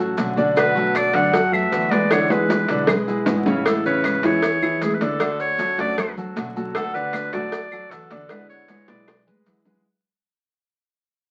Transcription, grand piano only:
0.00 F#3 F#4 A4
0.37 D3 D4 D5
0.76 F#3 F#4 A4
1.14 D3 D4 D5
1.33 F#3 F#4 A4
1.52 F#3 F#4 A4
1.92 G#3 G#4 B4
2.11 D3 D4 D5
2.30 G#3 G#4 B4
2.70 D3 D4 D5
2.89 G#3 G#4 B4
3.08 G#3 G#4 B4
3.46 C#3 C#4 C#5
3.85 C#3 C#4 C#5
4.24 E3 E4 G#4
4.62 E3 E4 G#4
5.01 D3 D4 D5
5.20 D3 D5
5.59 F#3 F#4 A4
5.79 F#3 F#4 A4
6.17 F#3 F#4 A4
6.56 F#3 F#4 A4
6.94 D3 D4 D5
7.34 F#3 F#4 A4
7.72 F#3 F#4 A4
8.11 D3 D4 D5
8.30 D3 D4 D5
8.69 G#3 G#4 B4
8.88 G#3 G#4 B4
9.27 G#3 G#4 B4
9.66 G#3 G#4 B4

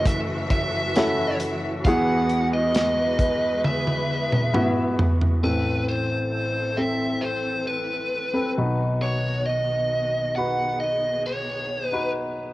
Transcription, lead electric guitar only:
0.07 E5
0.51 E5
1.85 F#5
2.54 D#5
3.65 E5
5.44 B4
5.89 C5
6.77 E5
7.21 C5
7.67 B4
9.02 C#5
9.46 D#5
10.36 F#5
10.80 D#5
11.26 C#5
11.87 B4

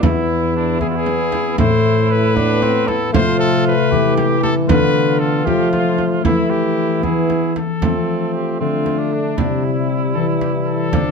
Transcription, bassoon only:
0.02 B3
0.82 B3
1.59 A3
2.35 B3
3.13 A3
4.69 B3
5.47 A3
6.25 A3
7.03 B3
7.82 A3
8.61 A3
9.38 G3
10.94 F3

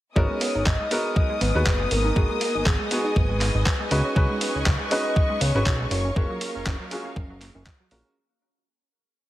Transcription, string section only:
0.16 B3 D#5 G#5 D#6
3.91 B4 C#6
5.91 A#4 F5

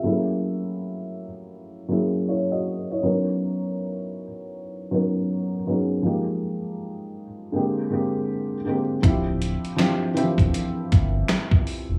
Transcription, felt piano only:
Already playing: G4 E5
0.03 F#3 A3 C#4 E4 G#4
0.10 A#3
1.88 F#3 A#3 C#4 E4 G#4
2.28 E4 C#5
2.52 F#4 D#5
2.91 E4 C#5
3.03 F#3 B3 C#4 D#4
3.07 A#4
4.91 F#3 B3 C#4 D#4 A#4
5.67 F#3 B3 C#4 D#4 G#4
6.02 F3 G#3 A#3 D#4
6.06 G4
7.52 D3 G#3 A#3 C4
7.56 G4
7.90 D3 G#3 A#3 C4 G4
8.65 D3 G#3 A#3 C4 G4
9.02 F3 C4 D4 E4 G4
9.76 F3 C4 D4 E4 G4
10.14 E3 C4 D4 E4
10.18 F3 G4

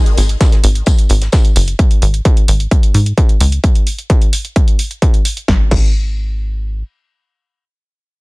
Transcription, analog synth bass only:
0.17 G#1
0.64 G#1
1.10 G#1
1.56 F#1
2.02 G#1
2.48 G#1
2.94 G#2
3.41 C#2
5.48 G#1
5.71 G#1

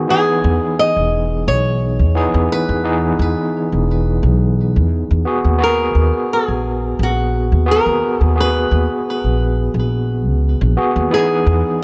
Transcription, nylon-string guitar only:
0.10 G#4
0.79 D#5
1.48 C#5
2.52 B4
5.63 A#4
6.33 G#4
7.03 F#4
7.71 A#4
8.23 G#4
8.40 B4
11.14 G#4

